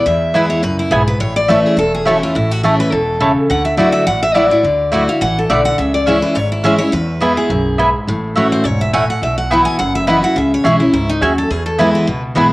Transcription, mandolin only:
0.34 B3 E4 B4 G#5
0.91 B3 E4 B4 G#5
1.48 A3 E4 C#5 A5
2.06 A3 E4 C#5 A5
2.64 A3 E4 C#5 A5
3.20 A3 E4 C#5 A5
3.78 A3 E4 D5 F#5
4.34 A3 E4 D5 F#5
4.92 A3 E4 D5 F#5
5.50 A3 E4 D5 F#5
6.06 C#4 G#4 E5 G#5
6.64 C#4 G#4 E5 G#5
7.21 B3 E4 B4 G#5
7.78 B3 E4 B4 G#5
8.36 A3 E4 C#5 F#5
8.93 A3 E4 C#5 F#5
9.50 B3 E4 B4 F#5
10.07 B3 E4 B4 F#5
10.64 C#4 G#4 E5 G#5
11.21 C#4 G#4 E5 G#5
11.79 B3 E4 B4 G#5
12.36 B3 E4 B4 G#5

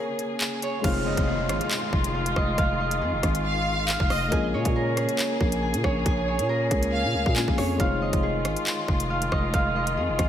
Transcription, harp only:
Already playing: G#4 A#4 C#5 G#5
0.40 G#5
0.63 C#5
0.84 F5
1.06 D#5
1.27 G#4
1.50 F4
2.14 F5
2.36 D#5
2.58 F5
2.80 D#5
3.01 G#4
3.23 F4
3.89 F5
4.10 D#5
4.32 G#5
4.54 C#5
4.76 A#4
4.97 G#4
5.63 G#5
5.84 C#5
6.06 G#5
6.28 C#5
6.49 A#4
6.71 G#4
7.36 G#5
7.59 C#5
7.80 F5
8.02 D#5
8.23 G#4
8.45 F4
9.10 F5
9.32 D#5
9.54 F5
9.76 D#5
9.97 G#4
10.19 F4

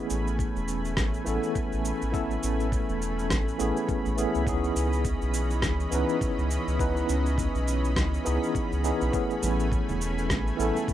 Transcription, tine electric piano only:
Already playing: E3 A3 B3 C#4 G#4
1.24 E3 A3 B3 C#4
1.29 A4
2.12 E3 A3 B3 C#4 A4
3.58 E3 A3 B3 C#4 G#4
4.16 E3 A3 B3 C#4 G#4
4.44 E3 B3 C#4 D#4
4.49 G#4
5.90 E3 B3 C#4 D#4
5.95 B4
6.79 E3 B3 C#4 D#4 B4
8.25 E3 B3 C#4 D#4 G#4
8.84 E3 B3 C#4 D#4 G#4
9.11 E3 A3 B3 C#4
9.15 G#4
10.57 E3 A3 B3 C#4
10.62 A4

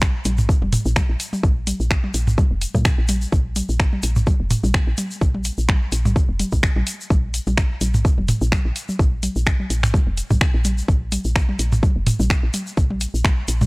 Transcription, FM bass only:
Already playing: A#1
0.25 A#1
0.62 F1
0.86 A#1
1.09 A#1
1.43 A#1
1.80 A#1
2.14 A#1
2.51 F1
2.75 A#2
2.98 A#1
3.32 A#1
3.69 A#1
4.03 A#1
4.40 F1
4.64 A#1
4.87 A#1
5.21 A#1
5.58 A#1
5.92 A#1
6.29 F1
6.52 A#1
6.76 A#1
7.10 A#1
7.47 A#1
7.81 A#1
8.18 F1
8.41 A#1
8.65 A#1
8.99 A#1
9.36 A#1
9.70 A#1
10.07 F1
10.31 A#1
10.54 A#1
10.88 A#1
11.25 A#1
11.59 A#1
11.96 F1
12.20 A#1
12.43 A#1
12.77 A#1
13.14 A#1
13.48 A#1

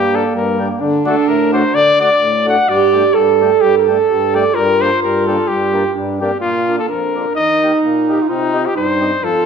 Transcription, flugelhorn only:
Already playing: G4
0.15 A4
0.36 A#4
1.06 A4
1.28 A#4
1.53 C5
1.75 D5
2.01 D5
2.49 F#5
2.69 D5
3.15 A4
3.61 G4
3.78 A#4
3.86 A4
4.35 D5
4.55 A#4
4.81 C5
5.03 A#4
5.27 A4
5.48 G4
6.19 G4
6.41 F4
6.79 A4
6.89 A#4
7.35 D#5
8.07 G4
8.22 F4
8.28 D#4
8.66 G4
8.77 C5
9.24 A4

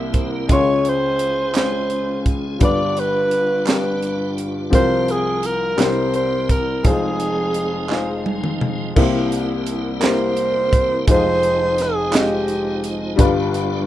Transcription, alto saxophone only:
0.53 C#5
0.89 C5
1.58 C5
2.64 D5
2.99 B4
3.69 B4
4.75 C5
5.11 G#4
5.46 A#4
5.82 C5
6.16 C5
6.51 A#4
6.87 G#4
10.04 C5
11.12 C5
11.82 G#4
12.17 G4

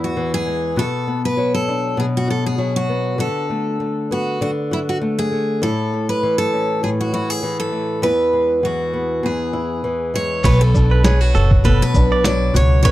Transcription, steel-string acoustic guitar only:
0.04 F#4
0.34 G#4
0.79 A4
1.25 B4
1.54 A4
2.00 G#4
2.17 F#4
2.30 A4
2.46 G#4
2.76 F#4
3.20 A4
4.12 F#4
4.42 F#4
4.73 E4
4.89 F#4
5.19 G#4
5.63 A4
6.09 B4
6.38 A4
6.84 G#4
7.01 F#4
7.14 F#4
7.30 G#4
7.60 A4
8.03 B4
8.65 F#4
9.26 G#4
10.15 C#5
10.45 B4
10.61 A4
11.05 G#4
11.21 F#4
11.65 A4
11.82 B4
12.25 D5
12.56 C#5
12.83 B4 C#5

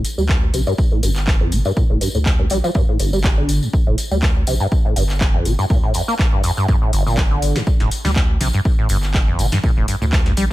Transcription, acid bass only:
0.18 G3
0.54 C3
0.67 G2
0.92 A2
1.03 G2
1.41 F2
1.52 C3
1.65 G2
1.77 A#2
1.90 A2
2.01 G2
2.15 A2
2.39 G2
2.51 G3
2.64 F3
2.75 G2
2.88 A2
3.00 G1
3.13 G3
3.24 G3
3.37 D3
3.62 G2
3.87 A2
4.11 G3
4.47 C3
4.60 G2
4.85 A2
4.96 G2
5.34 F2
5.45 C3
5.59 G2
5.70 A#2
5.83 A2
5.95 F2
6.08 A#3
6.33 G2
6.44 F2
6.57 G2
6.69 G2
6.82 A2
6.93 G1
7.06 A#2
7.18 G3
7.31 D3
7.56 G2
7.80 A2
8.05 G3
8.41 C3
8.54 G2
8.79 A2
8.90 G2
9.28 F2
9.39 C3
9.52 G2
9.64 A#2
9.77 A2
9.88 G2
10.02 A2
10.26 G2
10.37 G3

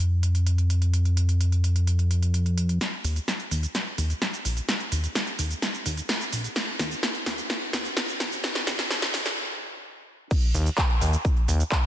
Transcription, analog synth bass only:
Already playing: F2
3.04 D#2
3.51 D#2
3.98 D#2
4.45 A#1
4.92 D#2
5.39 D#2
5.86 D#2
6.33 A#1
6.79 D#2
7.26 D#2
7.73 D#2
8.20 A#1
8.67 D#2
9.14 D#2
10.55 D#2
11.01 D#2
11.48 D#2

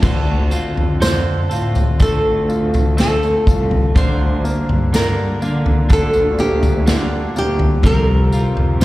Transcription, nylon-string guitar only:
1.02 C5
2.02 A4
3.00 A4
3.97 C5
4.96 A#4
5.93 A4
6.40 G4
7.38 G4
7.86 A#4

